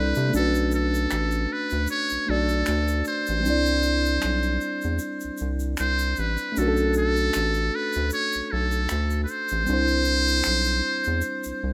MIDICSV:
0, 0, Header, 1, 5, 480
1, 0, Start_track
1, 0, Tempo, 779221
1, 197, Time_signature, 4, 2, 24, 8
1, 7226, End_track
2, 0, Start_track
2, 0, Title_t, "Muted trumpet"
2, 0, Program_c, 0, 59
2, 0, Note_on_c, 0, 71, 89
2, 205, Note_off_c, 0, 71, 0
2, 221, Note_on_c, 0, 69, 91
2, 433, Note_off_c, 0, 69, 0
2, 459, Note_on_c, 0, 69, 85
2, 938, Note_on_c, 0, 71, 80
2, 947, Note_off_c, 0, 69, 0
2, 1167, Note_off_c, 0, 71, 0
2, 1175, Note_on_c, 0, 73, 98
2, 1414, Note_on_c, 0, 69, 91
2, 1423, Note_off_c, 0, 73, 0
2, 1885, Note_off_c, 0, 69, 0
2, 1893, Note_on_c, 0, 72, 103
2, 3382, Note_off_c, 0, 72, 0
2, 3572, Note_on_c, 0, 72, 92
2, 3815, Note_on_c, 0, 71, 80
2, 3824, Note_off_c, 0, 72, 0
2, 4056, Note_on_c, 0, 69, 93
2, 4065, Note_off_c, 0, 71, 0
2, 4286, Note_off_c, 0, 69, 0
2, 4296, Note_on_c, 0, 69, 96
2, 4774, Note_on_c, 0, 71, 87
2, 4783, Note_off_c, 0, 69, 0
2, 5005, Note_off_c, 0, 71, 0
2, 5012, Note_on_c, 0, 73, 97
2, 5245, Note_on_c, 0, 69, 90
2, 5255, Note_off_c, 0, 73, 0
2, 5682, Note_off_c, 0, 69, 0
2, 5690, Note_on_c, 0, 71, 65
2, 5728, Note_on_c, 0, 72, 113
2, 5738, Note_off_c, 0, 71, 0
2, 7226, Note_off_c, 0, 72, 0
2, 7226, End_track
3, 0, Start_track
3, 0, Title_t, "Tine electric piano"
3, 0, Program_c, 1, 4
3, 0, Control_c, 1, 64, 127
3, 0, Note_on_c, 1, 55, 48
3, 0, Note_on_c, 1, 60, 44
3, 0, Note_on_c, 1, 62, 43
3, 0, Note_on_c, 1, 64, 46
3, 0, Note_on_c, 1, 69, 45
3, 0, Note_on_c, 1, 74, 54
3, 181, Note_on_c, 1, 57, 62
3, 192, Note_on_c, 1, 61, 58
3, 194, Note_off_c, 1, 55, 0
3, 198, Note_off_c, 1, 60, 0
3, 200, Note_off_c, 1, 62, 0
3, 204, Control_c, 1, 64, 0
3, 205, Note_off_c, 1, 64, 0
3, 205, Note_off_c, 1, 69, 0
3, 208, Note_on_c, 1, 62, 57
3, 224, Note_on_c, 1, 66, 59
3, 229, Note_off_c, 1, 74, 0
3, 240, Note_on_c, 1, 71, 70
3, 297, Control_c, 1, 64, 127
3, 1365, Note_off_c, 1, 57, 0
3, 1370, Note_off_c, 1, 61, 0
3, 1378, Note_off_c, 1, 62, 0
3, 1387, Note_off_c, 1, 66, 0
3, 1395, Note_off_c, 1, 71, 0
3, 1395, Note_on_c, 1, 57, 48
3, 1407, Note_on_c, 1, 62, 46
3, 1414, Note_on_c, 1, 66, 43
3, 1423, Note_on_c, 1, 74, 54
3, 2095, Note_on_c, 1, 55, 64
3, 2111, Note_on_c, 1, 60, 60
3, 2116, Note_off_c, 1, 57, 0
3, 2121, Note_off_c, 1, 62, 0
3, 2124, Control_c, 1, 64, 0
3, 2125, Note_off_c, 1, 66, 0
3, 2128, Note_on_c, 1, 62, 57
3, 2130, Note_off_c, 1, 74, 0
3, 2141, Note_on_c, 1, 64, 56
3, 2156, Note_on_c, 1, 74, 71
3, 2236, Control_c, 1, 64, 127
3, 4001, Note_off_c, 1, 55, 0
3, 4009, Note_off_c, 1, 60, 0
3, 4017, Note_on_c, 1, 57, 61
3, 4018, Note_off_c, 1, 62, 0
3, 4024, Note_off_c, 1, 64, 0
3, 4031, Note_off_c, 1, 74, 0
3, 4033, Note_on_c, 1, 61, 59
3, 4045, Control_c, 1, 64, 0
3, 4048, Note_on_c, 1, 62, 61
3, 4061, Note_on_c, 1, 66, 60
3, 4076, Note_on_c, 1, 70, 56
3, 4101, Note_off_c, 1, 70, 0
3, 4115, Note_on_c, 1, 69, 70
3, 4155, Control_c, 1, 64, 127
3, 5922, Note_off_c, 1, 57, 0
3, 5930, Note_off_c, 1, 61, 0
3, 5938, Note_off_c, 1, 62, 0
3, 5938, Note_on_c, 1, 55, 60
3, 5944, Note_off_c, 1, 66, 0
3, 5952, Note_on_c, 1, 60, 60
3, 5964, Control_c, 1, 64, 0
3, 5968, Note_on_c, 1, 62, 58
3, 5971, Note_off_c, 1, 69, 0
3, 5982, Note_on_c, 1, 64, 59
3, 5996, Note_on_c, 1, 72, 73
3, 6061, Control_c, 1, 64, 127
3, 7226, Note_off_c, 1, 55, 0
3, 7226, Note_off_c, 1, 60, 0
3, 7226, Note_off_c, 1, 62, 0
3, 7226, Note_off_c, 1, 64, 0
3, 7226, Note_off_c, 1, 72, 0
3, 7226, End_track
4, 0, Start_track
4, 0, Title_t, "Analog synth bass"
4, 0, Program_c, 2, 38
4, 0, Note_on_c, 2, 36, 91
4, 85, Note_off_c, 2, 36, 0
4, 104, Note_on_c, 2, 48, 95
4, 195, Note_off_c, 2, 48, 0
4, 211, Note_on_c, 2, 35, 100
4, 659, Note_off_c, 2, 35, 0
4, 691, Note_on_c, 2, 33, 93
4, 903, Note_off_c, 2, 33, 0
4, 1062, Note_on_c, 2, 38, 86
4, 1154, Note_off_c, 2, 38, 0
4, 1304, Note_on_c, 2, 35, 46
4, 1343, Note_off_c, 2, 35, 0
4, 1412, Note_on_c, 2, 35, 96
4, 1624, Note_off_c, 2, 35, 0
4, 1652, Note_on_c, 2, 38, 99
4, 1864, Note_off_c, 2, 38, 0
4, 2027, Note_on_c, 2, 33, 96
4, 2131, Note_on_c, 2, 36, 98
4, 2140, Note_off_c, 2, 33, 0
4, 2579, Note_off_c, 2, 36, 0
4, 2614, Note_on_c, 2, 35, 94
4, 2825, Note_off_c, 2, 35, 0
4, 2985, Note_on_c, 2, 40, 76
4, 3076, Note_off_c, 2, 40, 0
4, 3231, Note_on_c, 2, 36, 43
4, 3269, Note_off_c, 2, 36, 0
4, 3335, Note_on_c, 2, 36, 80
4, 3545, Note_off_c, 2, 36, 0
4, 3573, Note_on_c, 2, 36, 87
4, 3785, Note_off_c, 2, 36, 0
4, 3811, Note_on_c, 2, 33, 88
4, 3925, Note_off_c, 2, 33, 0
4, 4051, Note_on_c, 2, 35, 97
4, 4499, Note_off_c, 2, 35, 0
4, 4535, Note_on_c, 2, 33, 98
4, 4745, Note_off_c, 2, 33, 0
4, 4906, Note_on_c, 2, 38, 86
4, 4996, Note_off_c, 2, 38, 0
4, 5147, Note_on_c, 2, 35, 43
4, 5186, Note_off_c, 2, 35, 0
4, 5255, Note_on_c, 2, 35, 99
4, 5465, Note_off_c, 2, 35, 0
4, 5493, Note_on_c, 2, 38, 100
4, 5704, Note_off_c, 2, 38, 0
4, 5864, Note_on_c, 2, 33, 86
4, 5955, Note_off_c, 2, 33, 0
4, 5970, Note_on_c, 2, 36, 102
4, 6419, Note_off_c, 2, 36, 0
4, 6450, Note_on_c, 2, 35, 91
4, 6663, Note_off_c, 2, 35, 0
4, 6821, Note_on_c, 2, 40, 82
4, 6914, Note_off_c, 2, 40, 0
4, 7061, Note_on_c, 2, 36, 45
4, 7101, Note_off_c, 2, 36, 0
4, 7167, Note_on_c, 2, 36, 84
4, 7226, Note_off_c, 2, 36, 0
4, 7226, End_track
5, 0, Start_track
5, 0, Title_t, "Drums"
5, 92, Note_on_c, 9, 82, 49
5, 153, Note_off_c, 9, 82, 0
5, 207, Note_on_c, 9, 82, 63
5, 269, Note_off_c, 9, 82, 0
5, 336, Note_on_c, 9, 82, 43
5, 398, Note_off_c, 9, 82, 0
5, 440, Note_on_c, 9, 82, 50
5, 502, Note_off_c, 9, 82, 0
5, 580, Note_on_c, 9, 82, 44
5, 642, Note_off_c, 9, 82, 0
5, 681, Note_on_c, 9, 26, 57
5, 681, Note_on_c, 9, 82, 55
5, 743, Note_off_c, 9, 26, 0
5, 743, Note_off_c, 9, 82, 0
5, 808, Note_on_c, 9, 82, 39
5, 870, Note_off_c, 9, 82, 0
5, 1047, Note_on_c, 9, 82, 43
5, 1109, Note_off_c, 9, 82, 0
5, 1152, Note_on_c, 9, 82, 62
5, 1214, Note_off_c, 9, 82, 0
5, 1291, Note_on_c, 9, 82, 53
5, 1353, Note_off_c, 9, 82, 0
5, 1532, Note_on_c, 9, 82, 42
5, 1594, Note_off_c, 9, 82, 0
5, 1639, Note_on_c, 9, 26, 57
5, 1639, Note_on_c, 9, 82, 61
5, 1700, Note_off_c, 9, 26, 0
5, 1700, Note_off_c, 9, 82, 0
5, 1774, Note_on_c, 9, 82, 47
5, 1835, Note_off_c, 9, 82, 0
5, 1878, Note_on_c, 9, 82, 43
5, 1940, Note_off_c, 9, 82, 0
5, 2011, Note_on_c, 9, 82, 51
5, 2073, Note_off_c, 9, 82, 0
5, 2128, Note_on_c, 9, 82, 67
5, 2189, Note_off_c, 9, 82, 0
5, 2255, Note_on_c, 9, 82, 41
5, 2316, Note_off_c, 9, 82, 0
5, 2358, Note_on_c, 9, 82, 50
5, 2420, Note_off_c, 9, 82, 0
5, 2498, Note_on_c, 9, 82, 42
5, 2560, Note_off_c, 9, 82, 0
5, 2598, Note_on_c, 9, 26, 60
5, 2598, Note_on_c, 9, 82, 58
5, 2659, Note_off_c, 9, 26, 0
5, 2659, Note_off_c, 9, 82, 0
5, 2728, Note_on_c, 9, 82, 38
5, 2790, Note_off_c, 9, 82, 0
5, 2839, Note_on_c, 9, 82, 43
5, 2901, Note_off_c, 9, 82, 0
5, 2967, Note_on_c, 9, 82, 42
5, 3028, Note_off_c, 9, 82, 0
5, 3072, Note_on_c, 9, 82, 59
5, 3134, Note_off_c, 9, 82, 0
5, 3206, Note_on_c, 9, 82, 47
5, 3267, Note_off_c, 9, 82, 0
5, 3310, Note_on_c, 9, 82, 45
5, 3372, Note_off_c, 9, 82, 0
5, 3446, Note_on_c, 9, 82, 40
5, 3508, Note_off_c, 9, 82, 0
5, 3555, Note_on_c, 9, 26, 58
5, 3555, Note_on_c, 9, 82, 59
5, 3617, Note_off_c, 9, 26, 0
5, 3617, Note_off_c, 9, 82, 0
5, 3688, Note_on_c, 9, 82, 50
5, 3750, Note_off_c, 9, 82, 0
5, 3795, Note_on_c, 9, 82, 39
5, 3857, Note_off_c, 9, 82, 0
5, 3925, Note_on_c, 9, 82, 50
5, 3987, Note_off_c, 9, 82, 0
5, 4043, Note_on_c, 9, 82, 64
5, 4105, Note_off_c, 9, 82, 0
5, 4169, Note_on_c, 9, 82, 43
5, 4231, Note_off_c, 9, 82, 0
5, 4273, Note_on_c, 9, 82, 48
5, 4335, Note_off_c, 9, 82, 0
5, 4414, Note_on_c, 9, 82, 42
5, 4475, Note_off_c, 9, 82, 0
5, 4517, Note_on_c, 9, 26, 60
5, 4517, Note_on_c, 9, 82, 62
5, 4579, Note_off_c, 9, 26, 0
5, 4579, Note_off_c, 9, 82, 0
5, 4646, Note_on_c, 9, 82, 38
5, 4707, Note_off_c, 9, 82, 0
5, 4883, Note_on_c, 9, 82, 43
5, 4945, Note_off_c, 9, 82, 0
5, 4991, Note_on_c, 9, 82, 63
5, 5052, Note_off_c, 9, 82, 0
5, 5127, Note_on_c, 9, 82, 51
5, 5189, Note_off_c, 9, 82, 0
5, 5368, Note_on_c, 9, 82, 43
5, 5429, Note_off_c, 9, 82, 0
5, 5476, Note_on_c, 9, 26, 64
5, 5476, Note_on_c, 9, 82, 57
5, 5538, Note_off_c, 9, 26, 0
5, 5538, Note_off_c, 9, 82, 0
5, 5608, Note_on_c, 9, 82, 45
5, 5670, Note_off_c, 9, 82, 0
5, 5714, Note_on_c, 9, 82, 41
5, 5776, Note_off_c, 9, 82, 0
5, 5842, Note_on_c, 9, 82, 51
5, 5904, Note_off_c, 9, 82, 0
5, 5955, Note_on_c, 9, 82, 62
5, 6017, Note_off_c, 9, 82, 0
5, 6084, Note_on_c, 9, 82, 39
5, 6145, Note_off_c, 9, 82, 0
5, 6189, Note_on_c, 9, 82, 48
5, 6251, Note_off_c, 9, 82, 0
5, 6331, Note_on_c, 9, 82, 46
5, 6393, Note_off_c, 9, 82, 0
5, 6429, Note_on_c, 9, 26, 55
5, 6429, Note_on_c, 9, 82, 58
5, 6491, Note_off_c, 9, 26, 0
5, 6491, Note_off_c, 9, 82, 0
5, 6557, Note_on_c, 9, 82, 36
5, 6618, Note_off_c, 9, 82, 0
5, 6801, Note_on_c, 9, 82, 42
5, 6862, Note_off_c, 9, 82, 0
5, 6908, Note_on_c, 9, 82, 62
5, 6969, Note_off_c, 9, 82, 0
5, 7044, Note_on_c, 9, 82, 54
5, 7106, Note_off_c, 9, 82, 0
5, 7226, End_track
0, 0, End_of_file